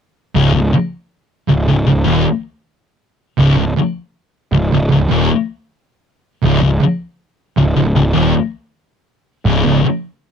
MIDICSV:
0, 0, Header, 1, 5, 480
1, 0, Start_track
1, 0, Tempo, 758534
1, 228, Time_signature, 4, 2, 24, 8
1, 6528, End_track
2, 0, Start_track
2, 0, Title_t, "Distorted electric guitar"
2, 0, Program_c, 0, 30
2, 227, Note_on_c, 0, 37, 90
2, 341, Note_off_c, 0, 37, 0
2, 347, Note_on_c, 0, 37, 72
2, 454, Note_off_c, 0, 37, 0
2, 942, Note_on_c, 0, 37, 72
2, 1058, Note_off_c, 0, 37, 0
2, 1066, Note_on_c, 0, 37, 67
2, 1174, Note_off_c, 0, 37, 0
2, 1182, Note_on_c, 0, 37, 74
2, 1288, Note_off_c, 0, 37, 0
2, 1291, Note_on_c, 0, 39, 94
2, 1415, Note_off_c, 0, 39, 0
2, 2146, Note_on_c, 0, 37, 104
2, 2260, Note_off_c, 0, 37, 0
2, 2267, Note_on_c, 0, 37, 76
2, 2386, Note_off_c, 0, 37, 0
2, 2873, Note_on_c, 0, 37, 70
2, 2992, Note_off_c, 0, 37, 0
2, 3000, Note_on_c, 0, 37, 68
2, 3107, Note_off_c, 0, 37, 0
2, 3115, Note_on_c, 0, 37, 79
2, 3234, Note_off_c, 0, 37, 0
2, 3237, Note_on_c, 0, 39, 99
2, 3349, Note_off_c, 0, 39, 0
2, 4082, Note_on_c, 0, 37, 100
2, 4189, Note_off_c, 0, 37, 0
2, 4197, Note_on_c, 0, 37, 76
2, 4312, Note_off_c, 0, 37, 0
2, 4795, Note_on_c, 0, 37, 69
2, 4904, Note_off_c, 0, 37, 0
2, 4912, Note_on_c, 0, 37, 74
2, 5025, Note_off_c, 0, 37, 0
2, 5032, Note_on_c, 0, 37, 72
2, 5145, Note_off_c, 0, 37, 0
2, 5147, Note_on_c, 0, 39, 103
2, 5262, Note_off_c, 0, 39, 0
2, 5991, Note_on_c, 0, 37, 96
2, 6102, Note_off_c, 0, 37, 0
2, 6114, Note_on_c, 0, 37, 75
2, 6228, Note_off_c, 0, 37, 0
2, 6528, End_track
3, 0, Start_track
3, 0, Title_t, "Picked electric bass"
3, 0, Program_c, 1, 34
3, 228, Note_on_c, 1, 25, 95
3, 340, Note_off_c, 1, 25, 0
3, 346, Note_on_c, 1, 25, 79
3, 459, Note_off_c, 1, 25, 0
3, 949, Note_on_c, 1, 25, 81
3, 1062, Note_off_c, 1, 25, 0
3, 1070, Note_on_c, 1, 25, 86
3, 1183, Note_off_c, 1, 25, 0
3, 1191, Note_on_c, 1, 25, 71
3, 1303, Note_off_c, 1, 25, 0
3, 1306, Note_on_c, 1, 27, 89
3, 1421, Note_off_c, 1, 27, 0
3, 2144, Note_on_c, 1, 25, 104
3, 2255, Note_off_c, 1, 25, 0
3, 2259, Note_on_c, 1, 25, 76
3, 2377, Note_off_c, 1, 25, 0
3, 2860, Note_on_c, 1, 25, 76
3, 2979, Note_off_c, 1, 25, 0
3, 2990, Note_on_c, 1, 25, 80
3, 3104, Note_off_c, 1, 25, 0
3, 3109, Note_on_c, 1, 25, 80
3, 3220, Note_off_c, 1, 25, 0
3, 3224, Note_on_c, 1, 27, 84
3, 3341, Note_off_c, 1, 27, 0
3, 4076, Note_on_c, 1, 25, 100
3, 4187, Note_off_c, 1, 25, 0
3, 4196, Note_on_c, 1, 25, 82
3, 4307, Note_off_c, 1, 25, 0
3, 4796, Note_on_c, 1, 25, 80
3, 4906, Note_off_c, 1, 25, 0
3, 4910, Note_on_c, 1, 25, 78
3, 5022, Note_off_c, 1, 25, 0
3, 5031, Note_on_c, 1, 25, 78
3, 5143, Note_off_c, 1, 25, 0
3, 5153, Note_on_c, 1, 27, 97
3, 5264, Note_off_c, 1, 27, 0
3, 5981, Note_on_c, 1, 25, 97
3, 6095, Note_off_c, 1, 25, 0
3, 6105, Note_on_c, 1, 25, 75
3, 6217, Note_off_c, 1, 25, 0
3, 6528, End_track
4, 0, Start_track
4, 0, Title_t, "Muted distorted electric guitar strokes"
4, 462, Note_on_c, 9, 29, 57
4, 525, Note_off_c, 9, 29, 0
4, 2394, Note_on_c, 9, 29, 55
4, 2457, Note_off_c, 9, 29, 0
4, 4319, Note_on_c, 9, 29, 54
4, 4382, Note_off_c, 9, 29, 0
4, 6235, Note_on_c, 9, 29, 54
4, 6299, Note_off_c, 9, 29, 0
4, 6528, End_track
5, 0, Start_track
5, 0, Title_t, "Muted picked electric bass strokes"
5, 468, Note_on_c, 9, 29, 41
5, 532, Note_off_c, 9, 29, 0
5, 2381, Note_on_c, 9, 29, 37
5, 2444, Note_off_c, 9, 29, 0
5, 4314, Note_on_c, 9, 29, 38
5, 4377, Note_off_c, 9, 29, 0
5, 6221, Note_on_c, 9, 29, 38
5, 6284, Note_off_c, 9, 29, 0
5, 6528, End_track
0, 0, End_of_file